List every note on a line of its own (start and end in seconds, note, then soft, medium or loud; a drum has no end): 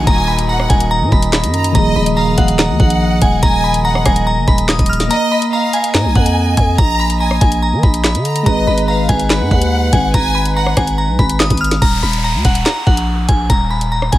0.00 1.70 D#3 medium
0.00 4.94 D#3 medium
0.00 1.71 A#3 medium
0.00 1.72 D#4 medium
0.00 1.73 F#4 medium
0.00 8.42 D#5 medium
0.00 downlifter medium
0.07 0.68 D#1 loud
0.07 0.47 G#5 loud
0.07 0.26 A#5 loud
0.07 kick loud
0.07 closed hi-hat medium
0.28 0.47 B5 medium
0.39 closed hi-hat medium
0.49 0.89 F#5 medium
0.49 0.68 A#5 medium
0.60 cross-stick medium
0.70 1.03 D#1 loud
0.70 0.89 G#5 medium
0.70 kick loud
0.70 closed hi-hat medium
0.80 closed hi-hat medium
0.91 1.10 A#5 loud
1.01 1.11 A#2 loud
1.12 1.45 D#1 loud
1.12 1.31 B5 medium
1.12 kick loud
1.22 closed hi-hat medium
1.33 1.72 B5 medium
1.33 snare loud
1.33 clap loud
1.43 1.73 F#2 loud
1.43 closed hi-hat medium
1.54 1.74 A#5 medium
1.54 closed hi-hat medium
1.64 closed hi-hat medium
1.72 1.95 D#1 loud
1.72 5.05 D#3 medium
1.72 5.07 F3 medium
1.72 5.06 A#3 medium
1.72 2.14 D#5 loud
1.72 1.94 A#5 loud
1.72 kick loud
1.72 closed hi-hat medium
1.78 5.08 G#4 medium
1.96 2.36 D#1 loud
1.96 2.15 B5 medium
2.06 closed hi-hat medium
2.17 2.56 F5 medium
2.17 2.36 A#5 medium
2.38 2.71 D#1 loud
2.38 2.57 F#5 medium
2.38 kick loud
2.38 closed hi-hat medium
2.48 closed hi-hat medium
2.59 3.39 F#5 loud
2.59 2.78 A#5 medium
2.59 snare loud
2.59 clap medium
2.69 2.79 D#2 loud
2.80 3.20 A#1 loud
2.80 3.19 F#5 medium
2.80 kick loud
2.90 closed hi-hat medium
3.22 3.42 D#1 loud
3.22 3.41 G#5 medium
3.22 kick loud
3.22 closed hi-hat medium
3.43 4.03 D#1 loud
3.43 3.82 G#5 loud
3.43 3.62 A#5 loud
3.43 kick loud
3.43 closed hi-hat medium
3.64 3.83 B5 medium
3.74 closed hi-hat medium
3.85 4.24 F#5 medium
3.85 4.04 A#5 loud
3.95 cross-stick medium
4.06 4.39 D#1 loud
4.06 4.25 G#5 medium
4.06 kick medium
4.06 cross-stick loud
4.06 closed hi-hat medium
4.16 closed hi-hat medium
4.27 4.46 A#5 medium
4.37 4.47 F#1 loud
4.48 4.78 D#1 loud
4.48 4.67 B5 medium
4.48 kick loud
4.58 closed hi-hat medium
4.69 4.88 D#6 medium
4.69 snare loud
4.69 clap loud
4.79 5.09 D#1 loud
4.79 kick medium
4.79 closed hi-hat medium
4.86 5.09 F6 medium
4.86 closed hi-hat medium
4.93 closed hi-hat medium
5.00 snare medium
5.00 closed hi-hat medium
5.08 8.41 A#3 medium
5.08 8.43 A#3 medium
5.08 5.50 D#5 loud
5.08 8.43 D#5 medium
5.08 5.30 A#5 loud
5.08 closed hi-hat medium
5.32 5.51 B5 medium
5.42 closed hi-hat medium
5.53 5.92 F5 medium
5.53 5.72 A#5 medium
5.73 5.93 G#5 medium
5.73 closed hi-hat medium
5.84 closed hi-hat medium
5.94 6.06 A#2 loud
5.94 6.74 G#5 loud
5.94 6.14 A#5 medium
5.94 snare loud
5.94 clap medium
6.05 6.15 A#1 loud
6.15 6.56 F2 loud
6.15 6.55 F#5 medium
6.15 kick loud
6.26 closed hi-hat medium
6.57 6.78 F2 loud
6.57 6.77 G#5 medium
6.57 kick loud
6.57 closed hi-hat medium
6.78 7.39 A#1 loud
6.78 7.18 A#5 loud
6.78 6.98 A#5 loud
6.78 kick loud
6.78 closed hi-hat medium
7.00 7.19 B5 medium
7.10 closed hi-hat medium
7.20 7.60 G#5 medium
7.20 7.40 A#5 medium
7.31 cross-stick medium
7.41 7.74 A#1 loud
7.41 7.61 G#5 medium
7.41 kick loud
7.41 closed hi-hat medium
7.52 closed hi-hat medium
7.62 7.82 A#5 medium
7.73 7.83 F3 loud
7.83 8.16 A#1 loud
7.83 8.02 B5 medium
7.83 kick loud
7.94 closed hi-hat medium
8.04 8.44 B5 medium
8.04 snare loud
8.04 clap loud
8.15 8.45 D3 loud
8.15 closed hi-hat medium
8.25 8.45 A#5 medium
8.25 closed hi-hat medium
8.36 closed hi-hat medium
8.43 8.66 G#1 loud
8.43 11.76 G#3 medium
8.43 11.79 G#3 medium
8.43 11.79 D#4 medium
8.43 11.77 G#4 medium
8.43 11.79 B4 medium
8.43 11.78 B4 medium
8.43 8.86 D#5 loud
8.43 8.65 A#5 loud
8.43 kick loud
8.43 closed hi-hat medium
8.49 11.79 D#5 medium
8.67 9.07 G#1 loud
8.67 8.87 B5 medium
8.78 closed hi-hat medium
8.88 9.28 F5 medium
8.88 9.07 A#5 medium
9.09 9.42 G#1 loud
9.09 9.28 G#5 medium
9.09 kick loud
9.09 closed hi-hat medium
9.20 closed hi-hat medium
9.30 10.10 F#5 loud
9.30 9.49 B5 medium
9.30 snare loud
9.30 clap medium
9.41 9.51 G#2 loud
9.51 9.91 D#2 loud
9.51 9.91 F#5 medium
9.51 kick loud
9.62 closed hi-hat medium
9.93 10.13 G#1 loud
9.93 10.12 G#5 medium
9.93 kick loud
9.93 closed hi-hat medium
10.14 10.74 G#1 loud
10.14 10.54 G#5 loud
10.14 10.33 A#5 loud
10.14 kick loud
10.14 closed hi-hat medium
10.35 10.54 B5 medium
10.45 closed hi-hat medium
10.56 10.95 F#5 medium
10.56 10.76 A#5 medium
10.67 cross-stick medium
10.77 11.10 G#1 loud
10.77 10.96 G#5 medium
10.77 kick loud
10.77 cross-stick loud
10.77 closed hi-hat medium
10.87 closed hi-hat medium
10.98 11.17 A#5 medium
11.08 11.18 B1 loud
11.19 11.49 G#1 loud
11.19 11.38 B5 medium
11.19 kick loud
11.29 closed hi-hat medium
11.39 11.59 D#6 medium
11.39 snare loud
11.39 clap medium
11.50 11.81 G#1 loud
11.50 kick loud
11.50 closed hi-hat medium
11.57 11.80 F6 medium
11.57 closed hi-hat medium
11.64 closed hi-hat medium
11.71 snare medium
11.71 closed hi-hat medium
11.82 12.02 D#1 loud
11.82 12.01 A#5 loud
11.82 kick loud
11.82 closed hi-hat medium
11.82 downlifter medium
12.03 12.36 D#1 loud
12.03 12.22 B5 medium
12.13 closed hi-hat medium
12.24 12.43 A#5 medium
12.34 12.44 D#2 loud
12.45 12.65 D#1 loud
12.45 12.64 F#5 medium
12.45 kick medium
12.45 closed hi-hat medium
12.55 closed hi-hat medium
12.66 12.85 A#5 medium
12.66 snare loud
12.66 clap medium
12.87 13.27 A#1 loud
12.87 13.26 F#5 medium
12.87 kick loud
12.97 closed hi-hat medium
13.29 13.49 A#1 loud
13.29 13.48 G#5 medium
13.29 kick loud
13.29 closed hi-hat medium
13.50 14.10 D#1 loud
13.50 13.69 A#5 loud
13.50 kick loud
13.50 closed hi-hat medium
13.71 13.90 B5 medium
13.81 closed hi-hat medium
13.92 14.11 A#5 medium
14.02 cross-stick medium
14.12 14.18 D#1 loud
14.12 14.18 G#5 medium
14.12 kick medium
14.12 closed hi-hat medium